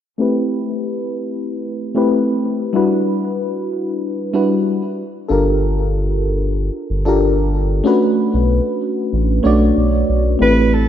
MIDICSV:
0, 0, Header, 1, 4, 480
1, 0, Start_track
1, 0, Tempo, 638298
1, 148, Time_signature, 4, 2, 24, 8
1, 8186, End_track
2, 0, Start_track
2, 0, Title_t, "Soprano saxophone"
2, 0, Program_c, 0, 64
2, 7835, Note_on_c, 0, 71, 99
2, 8073, Note_on_c, 0, 69, 92
2, 8085, Note_off_c, 0, 71, 0
2, 8186, Note_off_c, 0, 69, 0
2, 8186, End_track
3, 0, Start_track
3, 0, Title_t, "FM electric piano"
3, 0, Program_c, 1, 5
3, 136, Note_on_c, 1, 57, 57
3, 144, Note_on_c, 1, 60, 53
3, 150, Note_on_c, 1, 64, 57
3, 155, Note_on_c, 1, 67, 58
3, 161, Note_on_c, 1, 71, 71
3, 291, Control_c, 1, 64, 127
3, 1437, Note_off_c, 1, 57, 0
3, 1441, Note_off_c, 1, 60, 0
3, 1444, Note_off_c, 1, 64, 0
3, 1447, Note_off_c, 1, 67, 0
3, 1450, Note_off_c, 1, 71, 0
3, 1463, Note_on_c, 1, 57, 74
3, 1470, Note_on_c, 1, 60, 64
3, 1475, Note_on_c, 1, 64, 68
3, 1479, Note_on_c, 1, 67, 66
3, 1486, Note_on_c, 1, 71, 85
3, 2035, Note_off_c, 1, 57, 0
3, 2039, Note_off_c, 1, 60, 0
3, 2041, Note_off_c, 1, 64, 0
3, 2043, Note_off_c, 1, 67, 0
3, 2047, Note_off_c, 1, 71, 0
3, 2053, Note_on_c, 1, 55, 70
3, 2060, Note_on_c, 1, 62, 66
3, 2067, Note_on_c, 1, 64, 68
3, 2072, Note_on_c, 1, 66, 69
3, 2078, Note_on_c, 1, 71, 86
3, 2079, Control_c, 1, 64, 0
3, 2220, Control_c, 1, 64, 127
3, 3233, Note_off_c, 1, 55, 0
3, 3237, Note_off_c, 1, 62, 0
3, 3240, Note_off_c, 1, 64, 0
3, 3242, Note_off_c, 1, 66, 0
3, 3245, Note_off_c, 1, 71, 0
3, 3260, Note_on_c, 1, 55, 70
3, 3262, Note_on_c, 1, 62, 65
3, 3267, Note_on_c, 1, 64, 64
3, 3270, Note_on_c, 1, 66, 67
3, 3273, Note_on_c, 1, 71, 72
3, 3730, Note_off_c, 1, 55, 0
3, 3731, Note_off_c, 1, 62, 0
3, 3734, Note_off_c, 1, 64, 0
3, 3735, Note_off_c, 1, 66, 0
3, 3737, Note_off_c, 1, 71, 0
3, 3758, Control_c, 1, 64, 0
3, 3893, Control_c, 1, 64, 127
3, 3974, Note_on_c, 1, 69, 68
3, 3980, Note_on_c, 1, 62, 57
3, 3987, Note_on_c, 1, 65, 61
3, 3994, Note_on_c, 1, 67, 60
3, 4001, Note_on_c, 1, 70, 75
3, 5277, Note_off_c, 1, 69, 0
3, 5280, Note_off_c, 1, 62, 0
3, 5283, Note_off_c, 1, 65, 0
3, 5286, Note_off_c, 1, 67, 0
3, 5290, Note_off_c, 1, 70, 0
3, 5304, Note_on_c, 1, 69, 72
3, 5309, Note_on_c, 1, 62, 70
3, 5315, Note_on_c, 1, 65, 72
3, 5323, Note_on_c, 1, 67, 73
3, 5328, Note_on_c, 1, 70, 82
3, 5876, Note_off_c, 1, 69, 0
3, 5878, Note_off_c, 1, 62, 0
3, 5881, Note_off_c, 1, 65, 0
3, 5885, Note_off_c, 1, 67, 0
3, 5888, Note_off_c, 1, 70, 0
3, 5893, Note_on_c, 1, 57, 78
3, 5899, Note_on_c, 1, 61, 69
3, 5906, Note_on_c, 1, 62, 70
3, 5912, Note_on_c, 1, 66, 73
3, 5919, Control_c, 1, 64, 0
3, 5919, Note_on_c, 1, 71, 91
3, 6054, Control_c, 1, 64, 127
3, 7073, Note_off_c, 1, 57, 0
3, 7076, Note_off_c, 1, 61, 0
3, 7080, Note_off_c, 1, 62, 0
3, 7082, Note_off_c, 1, 66, 0
3, 7086, Note_off_c, 1, 71, 0
3, 7091, Note_on_c, 1, 57, 76
3, 7097, Note_on_c, 1, 73, 71
3, 7104, Note_on_c, 1, 62, 74
3, 7110, Note_on_c, 1, 66, 69
3, 7118, Note_on_c, 1, 74, 91
3, 7792, Note_off_c, 1, 57, 0
3, 7795, Note_off_c, 1, 73, 0
3, 7798, Note_off_c, 1, 62, 0
3, 7802, Note_off_c, 1, 66, 0
3, 7805, Note_off_c, 1, 74, 0
3, 7814, Note_on_c, 1, 57, 69
3, 7820, Note_on_c, 1, 60, 65
3, 7828, Note_on_c, 1, 64, 61
3, 7834, Note_on_c, 1, 67, 59
3, 7836, Control_c, 1, 64, 0
3, 7840, Note_on_c, 1, 71, 70
3, 7954, Control_c, 1, 64, 127
3, 8186, Note_off_c, 1, 57, 0
3, 8186, Note_off_c, 1, 60, 0
3, 8186, Note_off_c, 1, 64, 0
3, 8186, Note_off_c, 1, 67, 0
3, 8186, Note_off_c, 1, 71, 0
3, 8186, End_track
4, 0, Start_track
4, 0, Title_t, "Analog synth bass"
4, 0, Program_c, 2, 38
4, 3988, Note_on_c, 2, 31, 87
4, 5040, Note_off_c, 2, 31, 0
4, 5188, Note_on_c, 2, 31, 94
4, 5877, Note_off_c, 2, 31, 0
4, 6273, Note_on_c, 2, 35, 94
4, 6471, Note_off_c, 2, 35, 0
4, 6867, Note_on_c, 2, 33, 92
4, 7069, Note_off_c, 2, 33, 0
4, 7108, Note_on_c, 2, 35, 82
4, 7309, Note_off_c, 2, 35, 0
4, 7349, Note_on_c, 2, 35, 74
4, 7550, Note_off_c, 2, 35, 0
4, 7589, Note_on_c, 2, 35, 80
4, 7790, Note_off_c, 2, 35, 0
4, 7827, Note_on_c, 2, 33, 91
4, 8186, Note_off_c, 2, 33, 0
4, 8186, End_track
0, 0, End_of_file